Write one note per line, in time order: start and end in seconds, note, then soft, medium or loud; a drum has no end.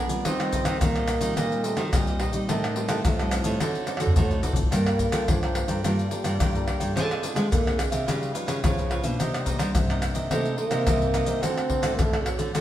0.00 0.22 F3 medium
0.00 0.27 B3 loud
0.08 0.33 G3 medium
0.08 0.33 C4 medium
0.08 0.34 F4 medium
0.08 0.24 A#4 soft
0.08 0.24 D5 soft
0.08 0.23 G#5 soft
0.08 pandeiro medium
0.08 maracas medium
0.25 0.78 D#3 medium
0.25 0.61 D#3 loud
0.25 0.83 C4 loud
0.25 0.51 D#4 medium
0.25 0.52 G4 medium
0.25 0.53 C5 medium
0.25 0.53 D#5 medium
0.25 pandeiro medium
0.25 tamborim medium
0.25 maracas medium
0.25 surdo medium
0.39 0.77 G3 medium
0.39 0.77 C4 medium
0.39 0.77 F4 medium
0.39 pandeiro soft
0.39 tamborim medium
0.39 maracas soft
0.53 0.65 D#4 medium
0.53 0.65 G4 soft
0.53 0.65 C5 medium
0.53 0.66 D#5 medium
0.53 pandeiro medium
0.53 maracas medium
0.53 surdo medium
0.65 0.78 D#3 medium
0.65 0.76 D#4 medium
0.65 0.76 G4 medium
0.65 0.76 C5 medium
0.65 0.76 D#5 medium
0.65 pandeiro medium
0.65 tamborim medium
0.65 maracas medium
0.80 1.34 A#2 medium
0.80 1.17 D#3 medium
0.80 1.07 G3 medium
0.80 1.36 A#3 loud
0.80 1.07 C4 medium
0.80 1.07 F4 medium
0.80 pandeiro medium
0.80 tamborim medium
0.80 maracas medium
0.80 surdo medium
0.96 1.23 G4 soft
0.96 1.22 C5 soft
0.96 1.22 D#5 soft
0.96 pandeiro soft
0.96 tamborim medium
0.96 maracas soft
1.08 pandeiro medium
1.08 tamborim medium
1.08 maracas medium
1.20 1.34 D#3 medium
1.20 1.45 G3 medium
1.20 1.45 C4 medium
1.20 1.46 F4 medium
1.20 1.36 C5 soft
1.20 1.36 D#5 medium
1.20 pandeiro medium
1.20 maracas medium
1.24 1.37 G4 soft
1.36 1.73 A#2 medium
1.36 1.90 D#3 medium
1.36 1.65 A#3 loud
1.36 1.63 D#4 medium
1.36 1.63 G4 medium
1.36 1.64 C5 medium
1.36 1.65 D#5 medium
1.36 pandeiro medium
1.36 tamborim medium
1.36 maracas medium
1.36 surdo medium
1.51 1.89 G3 medium
1.51 1.89 C4 medium
1.51 1.89 F4 medium
1.51 pandeiro soft
1.51 maracas soft
1.63 1.85 A3 loud
1.63 1.76 D#4 soft
1.63 1.76 G4 soft
1.63 1.76 C5 medium
1.63 1.77 D#5 medium
1.63 pandeiro medium
1.63 maracas medium
1.77 1.90 D#3 medium
1.77 1.87 D#4 medium
1.77 1.87 G4 medium
1.77 1.87 C5 medium
1.77 1.88 D#5 medium
1.77 pandeiro medium
1.77 tamborim medium
1.77 maracas medium
1.86 1.94 F#3 medium
1.92 2.17 A#2 medium
1.92 2.46 A#2 medium
1.92 2.50 G3 medium
1.92 2.19 G3 medium
1.92 2.20 C4 medium
1.92 2.05 D#4 medium
1.92 2.20 F4 medium
1.92 2.06 G4 medium
1.92 2.06 C5 medium
1.92 2.06 D#5 medium
1.92 pandeiro medium
1.92 tamborim medium
1.92 maracas medium
1.92 surdo loud
2.07 2.19 G4 soft
2.07 2.20 C5 soft
2.07 2.20 D#5 soft
2.07 pandeiro soft
2.07 maracas soft
2.20 2.33 D#4 medium
2.20 2.33 G4 medium
2.20 2.33 C5 medium
2.20 2.32 D#5 medium
2.20 pandeiro medium
2.20 tamborim medium
2.33 2.58 G3 medium
2.33 2.58 C4 medium
2.33 2.58 D#4 medium
2.33 2.47 G4 soft
2.33 2.47 C5 soft
2.33 2.47 D#5 soft
2.33 pandeiro medium
2.33 maracas medium
2.48 2.84 A2 medium
2.48 3.02 A2 medium
2.48 3.07 D#3 medium
2.48 2.75 G4 medium
2.48 2.76 C5 medium
2.48 2.76 D#5 medium
2.48 2.76 A5 medium
2.48 pandeiro medium
2.48 tamborim medium
2.48 maracas medium
2.48 surdo medium
2.64 pandeiro soft
2.64 tamborim medium
2.64 maracas soft
2.76 3.03 G3 medium
2.76 3.03 C4 medium
2.76 3.03 D#4 medium
2.76 2.87 G4 soft
2.76 2.88 C5 soft
2.76 2.88 D#5 medium
2.76 2.89 A5 medium
2.76 pandeiro medium
2.89 3.02 A3 medium
2.89 2.99 G4 medium
2.89 2.99 C5 medium
2.89 2.99 D#5 medium
2.89 2.99 A5 medium
2.89 pandeiro medium
2.89 tamborim medium
2.89 maracas loud
3.05 3.58 A2 medium
3.05 3.41 A2 medium
3.05 3.63 F3 medium
3.05 pandeiro medium
3.05 tamborim medium
3.05 maracas medium
3.05 surdo loud
3.19 3.56 G3 medium
3.19 3.57 C4 medium
3.19 3.57 D#4 medium
3.19 3.44 C5 soft
3.19 3.44 D#5 medium
3.19 3.43 A5 soft
3.19 pandeiro soft
3.19 tamborim medium
3.19 maracas soft
3.31 pandeiro medium
3.31 tamborim medium
3.31 maracas medium
3.44 3.58 A2 medium
3.44 3.59 C5 soft
3.44 3.59 D#5 soft
3.44 3.58 A5 soft
3.44 pandeiro medium
3.44 maracas medium
3.60 4.14 D3 medium
3.60 3.96 D3 medium
3.60 3.84 F#3 medium
3.60 4.45 F#3 medium
3.60 3.84 C4 soft
3.60 3.84 D#4 medium
3.60 3.86 F#4 medium
3.60 3.87 A4 medium
3.60 3.87 C5 medium
3.60 3.87 D5 medium
3.60 pandeiro medium
3.60 tamborim medium
3.60 maracas medium
3.60 surdo medium
3.75 pandeiro soft
3.75 maracas soft
3.87 4.14 F#3 medium
3.87 4.14 C4 medium
3.87 4.15 D#4 medium
3.87 3.99 F#4 soft
3.87 3.99 A4 soft
3.87 3.99 C5 medium
3.87 3.99 D5 medium
3.87 pandeiro medium
3.87 tamborim medium
3.87 maracas medium
3.97 4.10 F#4 medium
3.97 4.10 A4 medium
3.97 4.11 C5 medium
3.97 4.11 D5 medium
3.97 pandeiro medium
3.97 tamborim medium
3.97 maracas medium
4.01 4.14 D3 medium
4.07 surdo medium
4.16 4.69 A2 soft
4.16 4.40 A2 medium
4.16 4.29 F#4 medium
4.16 4.29 A4 medium
4.16 4.30 C5 medium
4.16 4.29 D5 medium
4.16 pandeiro medium
4.16 maracas medium
4.16 surdo loud
4.30 4.54 F#3 medium
4.30 4.54 C4 medium
4.30 4.54 D#4 medium
4.30 4.42 A4 soft
4.30 4.43 C5 soft
4.30 4.43 D5 soft
4.30 pandeiro soft
4.30 maracas soft
4.43 4.57 F#4 medium
4.43 4.56 A4 medium
4.43 4.55 C5 medium
4.43 4.54 D5 medium
4.43 pandeiro medium
4.43 maracas medium
4.43 surdo medium
4.53 4.94 A#3 medium
4.53 4.94 F4 medium
4.53 4.94 A4 medium
4.53 4.71 A4 soft
4.53 4.70 C5 soft
4.53 4.70 D5 soft
4.53 pandeiro medium
4.53 maracas medium
4.53 surdo medium
4.63 surdo medium
4.71 5.08 G2 medium
4.71 5.25 G3 soft
4.71 5.29 A#3 loud
4.71 4.97 F4 medium
4.71 4.98 A#4 medium
4.71 4.98 D5 medium
4.71 4.99 G5 medium
4.71 pandeiro medium
4.71 tamborim medium
4.71 maracas medium
4.71 surdo medium
4.86 pandeiro soft
4.86 tamborim medium
4.86 maracas soft
4.98 5.11 F4 soft
4.98 5.11 A#4 medium
4.98 5.11 D5 soft
4.98 5.12 G5 medium
4.98 pandeiro medium
4.98 maracas medium
4.98 surdo medium
5.12 5.25 D3 medium
5.12 5.51 A#3 medium
5.12 5.22 F4 medium
5.12 5.51 F4 medium
5.12 5.51 A4 medium
5.12 5.22 A#4 medium
5.12 5.22 D5 medium
5.12 5.23 G5 medium
5.12 pandeiro medium
5.12 tamborim medium
5.12 maracas medium
5.28 5.64 G2 medium
5.28 5.81 D3 medium
5.28 5.83 F3 medium
5.28 pandeiro medium
5.28 tamborim medium
5.28 maracas medium
5.28 surdo loud
5.43 5.69 A#4 soft
5.43 5.68 D5 soft
5.43 5.67 G5 soft
5.43 pandeiro soft
5.43 tamborim medium
5.43 maracas soft
5.54 5.72 A#3 medium
5.54 5.72 F4 medium
5.54 5.72 A4 medium
5.54 pandeiro medium
5.54 tamborim medium
5.68 5.81 G2 medium
5.68 5.83 A#4 soft
5.68 5.82 D5 soft
5.68 5.82 G5 soft
5.68 pandeiro medium
5.68 maracas medium
5.83 6.08 G2 medium
5.83 6.37 G3 medium
5.83 6.97 G3 loud
5.83 6.07 A#3 medium
5.83 6.07 F4 medium
5.83 6.10 F4 medium
5.83 6.08 A4 medium
5.83 6.10 A#4 medium
5.83 6.11 D5 medium
5.83 6.11 G5 medium
5.83 pandeiro medium
5.83 tamborim medium
5.83 maracas medium
5.83 surdo medium
5.99 pandeiro soft
5.99 maracas soft
6.10 6.37 A#3 soft
6.10 6.38 F4 medium
6.10 6.23 F4 soft
6.10 6.38 A4 medium
6.10 6.23 A#4 soft
6.10 6.24 D5 soft
6.10 6.24 G5 medium
6.10 pandeiro medium
6.10 maracas medium
6.24 6.37 G2 medium
6.24 6.34 F4 medium
6.24 6.34 A#4 medium
6.24 6.34 D5 medium
6.24 6.35 G5 medium
6.24 pandeiro soft
6.24 tamborim medium
6.24 maracas medium
6.40 6.76 G2 medium
6.40 6.93 D3 medium
6.40 6.53 F4 medium
6.40 6.53 A#4 medium
6.40 6.53 D5 medium
6.40 6.53 G5 medium
6.40 pandeiro medium
6.40 tamborim medium
6.40 maracas medium
6.40 surdo medium
6.54 6.91 A#3 medium
6.54 6.91 F4 medium
6.54 6.92 A4 medium
6.54 6.67 A#4 soft
6.54 6.67 D5 soft
6.54 6.67 G5 soft
6.54 pandeiro soft
6.54 maracas soft
6.67 6.80 F4 medium
6.67 6.81 A#4 medium
6.67 6.80 D5 medium
6.67 6.79 G5 medium
6.67 pandeiro medium
6.67 tamborim medium
6.80 6.95 G2 medium
6.80 6.95 A#4 soft
6.80 6.94 D5 soft
6.80 6.94 G5 soft
6.80 pandeiro soft
6.80 maracas medium
6.95 7.49 D3 soft
6.95 7.31 D3 medium
6.95 7.50 G#3 loud
6.95 7.19 C4 medium
6.95 7.21 D4 medium
6.95 7.19 F4 medium
6.95 7.22 G#4 medium
6.95 7.20 G#4 medium
6.95 7.23 C5 medium
6.95 7.23 F5 medium
6.95 pandeiro medium
6.95 tamborim medium
6.95 maracas medium
6.95 surdo soft
7.11 pandeiro soft
7.11 tamborim medium
7.11 maracas soft
7.22 7.49 C4 soft
7.22 7.34 D4 soft
7.22 7.50 F4 medium
7.22 7.34 G#4 soft
7.22 7.50 G#4 medium
7.22 7.35 C5 medium
7.22 7.35 F5 medium
7.22 pandeiro medium
7.22 maracas medium
7.35 7.49 G#3 medium
7.35 7.45 D4 medium
7.35 7.45 G#4 medium
7.35 7.46 C5 medium
7.35 7.46 F5 medium
7.35 pandeiro medium
7.35 tamborim medium
7.35 maracas medium
7.51 8.04 D3 medium
7.51 7.87 D3 medium
7.51 7.80 A#3 loud
7.51 pandeiro medium
7.51 tamborim medium
7.51 maracas medium
7.51 surdo loud
7.65 8.04 C4 medium
7.65 8.04 F4 medium
7.65 8.04 G#4 medium
7.65 7.91 G#4 soft
7.65 7.91 C5 soft
7.65 7.89 F5 medium
7.65 pandeiro soft
7.65 tamborim medium
7.65 maracas soft
7.78 8.07 G#3 medium
7.78 pandeiro medium
7.78 tamborim medium
7.78 maracas medium
7.91 8.05 C3 medium
7.91 8.06 G#4 soft
7.91 8.05 C5 soft
7.91 8.05 F5 soft
7.91 pandeiro medium
7.91 maracas medium
8.06 8.31 C#3 medium
8.06 8.61 C#3 medium
8.06 8.31 F3 medium
8.06 8.60 G3 loud
8.06 8.31 B3 medium
8.06 8.32 D#4 medium
8.06 8.32 F4 medium
8.06 8.33 B4 medium
8.06 8.33 C#5 medium
8.06 8.34 F5 medium
8.06 pandeiro medium
8.06 tamborim medium
8.06 maracas medium
8.06 surdo medium
8.23 pandeiro soft
8.23 maracas soft
8.33 8.72 F3 soft
8.33 8.72 B3 soft
8.33 8.73 D#4 medium
8.33 8.46 F4 medium
8.33 8.46 B4 medium
8.33 8.46 C#5 medium
8.33 8.47 F5 medium
8.33 pandeiro medium
8.33 maracas medium
8.47 8.60 C#3 medium
8.47 8.57 F4 medium
8.47 8.57 B4 medium
8.47 8.57 C#5 medium
8.47 8.58 F5 medium
8.47 pandeiro medium
8.47 tamborim medium
8.47 maracas medium
8.63 9.16 G#2 soft
8.63 9.00 C#3 medium
8.63 8.90 F3 medium
8.63 8.76 F4 medium
8.63 8.76 B4 medium
8.63 8.77 C#5 medium
8.63 8.76 F5 medium
8.63 pandeiro medium
8.63 tamborim medium
8.63 maracas medium
8.63 surdo loud
8.77 9.01 F3 medium
8.77 9.01 B3 medium
8.77 9.01 D#4 medium
8.77 8.89 B4 soft
8.77 8.90 C#5 soft
8.77 8.90 F5 soft
8.77 pandeiro soft
8.77 maracas soft
8.90 9.17 F3 medium
8.90 9.03 F4 medium
8.90 9.04 B4 medium
8.90 9.03 C#5 medium
8.90 9.02 F5 medium
8.90 pandeiro medium
8.90 tamborim medium
9.02 9.20 B2 medium
9.02 9.41 D#3 medium
9.02 9.41 A#3 medium
9.02 9.42 D4 medium
9.02 9.18 B4 soft
9.02 9.17 C#5 soft
9.02 9.17 F5 soft
9.02 pandeiro medium
9.02 maracas medium
9.18 9.72 C3 medium
9.18 9.55 C3 medium
9.18 10.00 G3 medium
9.18 9.44 D#4 medium
9.18 9.45 A#4 medium
9.18 9.46 C5 medium
9.18 9.46 D#5 medium
9.18 pandeiro medium
9.18 tamborim medium
9.18 maracas medium
9.18 surdo medium
9.34 pandeiro soft
9.34 tamborim medium
9.34 maracas soft
9.45 9.83 D#3 medium
9.45 9.84 A#3 medium
9.45 9.84 D4 medium
9.45 9.57 D#4 medium
9.45 9.57 A#4 soft
9.45 9.57 C5 medium
9.45 9.58 D#5 medium
9.45 pandeiro medium
9.45 maracas medium
9.45 surdo medium
9.58 9.72 G3 medium
9.58 9.68 D#4 medium
9.58 9.69 A#4 medium
9.58 9.69 C5 medium
9.58 9.69 D#5 medium
9.58 pandeiro medium
9.58 tamborim medium
9.58 maracas loud
9.74 10.28 G2 medium
9.74 10.11 C3 medium
9.74 pandeiro medium
9.74 tamborim medium
9.74 maracas medium
9.74 surdo medium
9.89 10.26 D#3 medium
9.89 10.27 A#3 medium
9.89 10.27 D4 medium
9.89 10.14 A#4 soft
9.89 10.14 C5 soft
9.89 10.13 D#5 medium
9.89 pandeiro soft
9.89 tamborim medium
9.89 maracas soft
10.02 pandeiro medium
10.02 tamborim medium
10.02 maracas medium
10.14 10.28 C3 medium
10.14 10.29 A#4 soft
10.14 10.29 C5 soft
10.14 10.28 D#5 medium
10.14 pandeiro medium
10.14 maracas medium
10.30 10.83 C3 medium
10.30 10.55 C3 loud
10.30 10.47 D#3 medium
10.30 10.57 A3 medium
10.30 10.47 A#3 medium
10.30 10.47 D4 medium
10.30 10.55 D#4 medium
10.30 10.57 A#4 medium
10.30 10.57 C5 medium
10.30 10.57 D#5 medium
10.30 pandeiro medium
10.30 tamborim medium
10.30 maracas medium
10.30 surdo medium
10.45 pandeiro soft
10.45 maracas soft
10.57 10.84 D#3 medium
10.57 11.44 A#3 loud
10.57 10.84 A#3 soft
10.57 10.85 D4 medium
10.57 10.69 D#4 soft
10.57 10.69 A#4 medium
10.57 10.70 C5 medium
10.57 10.70 D#5 medium
10.57 pandeiro medium
10.70 10.84 C3 medium
10.70 10.80 D#4 medium
10.70 10.80 A#4 medium
10.70 10.81 C5 medium
10.70 10.81 D#5 medium
10.70 pandeiro medium
10.70 tamborim medium
10.70 maracas medium
10.86 11.40 G2 medium
10.86 11.22 C3 medium
10.86 10.99 D#4 medium
10.86 10.99 A#4 medium
10.86 10.99 C5 medium
10.86 11.00 D#5 medium
10.86 pandeiro medium
10.86 tamborim medium
10.86 maracas medium
10.86 surdo loud
11.01 11.39 D#3 medium
11.01 11.39 A#3 medium
11.01 11.39 D4 medium
11.01 11.12 A#4 soft
11.01 11.13 C5 soft
11.01 11.14 D#5 soft
11.01 pandeiro soft
11.01 maracas soft
11.13 11.27 D#4 medium
11.13 11.27 A#4 medium
11.13 11.26 C5 medium
11.13 11.24 D#5 medium
11.13 pandeiro medium
11.13 tamborim medium
11.13 maracas medium
11.26 11.43 C3 medium
11.26 11.41 A#4 soft
11.26 11.41 C5 soft
11.26 11.40 D#5 medium
11.26 pandeiro soft
11.26 maracas medium
11.42 11.95 D3 medium
11.42 11.78 D3 medium
11.42 11.69 A3 medium
11.42 11.99 C4 loud
11.42 11.69 C4 medium
11.42 11.68 F#4 medium
11.42 11.69 F#4 medium
11.42 11.69 A4 medium
11.42 11.69 C5 medium
11.42 11.70 D5 medium
11.42 pandeiro medium
11.42 tamborim medium
11.42 maracas medium
11.42 surdo medium
11.58 pandeiro soft
11.58 tamborim medium
11.58 maracas soft
11.69 11.81 F#4 soft
11.69 11.81 A4 medium
11.69 11.81 C5 soft
11.69 11.82 D5 medium
11.69 pandeiro medium
11.69 surdo medium
11.82 11.95 A2 medium
11.82 12.07 A3 medium
11.82 12.07 C4 medium
11.82 11.92 F#4 medium
11.82 12.07 F#4 medium
11.82 11.92 A4 medium
11.82 11.92 C5 medium
11.82 11.92 D5 medium
11.82 pandeiro medium
11.82 tamborim medium
11.82 maracas medium
11.98 12.51 A2 medium
11.98 12.34 D3 medium
11.98 12.26 A3 loud
11.98 pandeiro medium
11.98 tamborim medium
11.98 maracas medium
11.98 surdo loud
12.12 12.50 A3 medium
12.12 12.50 C4 medium
12.12 12.50 F#4 medium
12.12 12.38 A4 soft
12.12 12.37 C5 soft
12.12 12.36 D5 soft
12.12 pandeiro soft
12.12 tamborim medium
12.12 maracas soft
12.25 12.53 F#3 medium
12.25 pandeiro medium
12.25 tamborim medium
12.38 12.51 D3 medium
12.38 12.53 A4 soft
12.38 12.52 C5 soft
12.38 12.52 D5 soft
12.38 pandeiro medium
12.38 maracas medium
12.54 12.61 D3 medium
12.54 12.61 D3 loud
12.54 12.61 F#3 medium
12.54 12.61 A3 medium
12.54 12.61 C4 medium
12.54 12.61 F#4 medium
12.54 12.61 A4 medium
12.54 12.61 C5 medium
12.54 12.61 D5 medium
12.54 pandeiro medium
12.54 tamborim medium
12.54 maracas medium
12.54 surdo medium